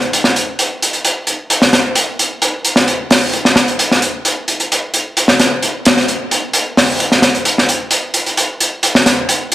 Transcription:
0.02 closed hi-hat
0.13 closed hi-hat
0.24 snare
0.36 closed hi-hat
0.59 closed hi-hat
0.82 closed hi-hat
0.93 closed hi-hat
1.05 closed hi-hat
1.27 closed hi-hat
1.50 closed hi-hat
1.62 snare
1.73 snare, closed hi-hat
1.95 closed hi-hat
2.19 closed hi-hat
2.42 closed hi-hat
2.65 closed hi-hat
2.76 snare
2.88 closed hi-hat
3.11 snare, open hi-hat
3.33 closed hi-hat
3.45 snare
3.56 snare, closed hi-hat
3.68 closed hi-hat
3.79 closed hi-hat
3.92 snare
4.02 closed hi-hat
4.25 closed hi-hat
4.48 closed hi-hat
4.60 closed hi-hat
4.72 closed hi-hat
4.94 closed hi-hat
5.17 closed hi-hat
5.28 snare
5.39 snare, closed hi-hat
5.63 closed hi-hat
5.85 snare, closed hi-hat
5.97 snare
6.08 closed hi-hat
6.31 closed hi-hat
6.53 closed hi-hat
6.77 snare, open hi-hat
7.00 closed hi-hat
7.12 snare
7.22 snare, closed hi-hat
7.35 closed hi-hat
7.45 closed hi-hat
7.58 snare
7.69 closed hi-hat
7.91 closed hi-hat
8.14 closed hi-hat
8.26 closed hi-hat
8.37 closed hi-hat
8.60 closed hi-hat
8.83 closed hi-hat
8.95 snare
9.06 snare, closed hi-hat
9.29 closed hi-hat
9.52 closed hi-hat

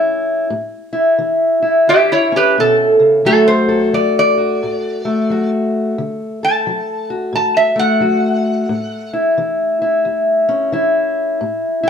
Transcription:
Already playing: E3 C#4 E4
0.50 A2
0.93 E4
1.18 E3
1.62 E4
1.87 E2 G4 E5
2.12 E4 C#5
2.32 C#4
2.36 G4 B4
2.58 B2 A4
2.99 C#3
3.25 D3 F#3 A3 F#4 A4
3.48 C5
3.69 A4
3.93 F#3 D5
4.19 D5
4.37 F#4
4.63 A2
5.05 A3
5.30 F#3 F#4
5.98 D3
6.43 A4 A5
6.67 F#3
7.10 F#4
7.33 A2 A5
7.57 E5
7.76 A3 F#5
8.00 F#3 F#4
8.69 A2
9.13 E4
9.38 E3
9.82 E4
10.05 E2
10.49 C#4
10.72 E3 E4
11.41 A2
11.83 E4

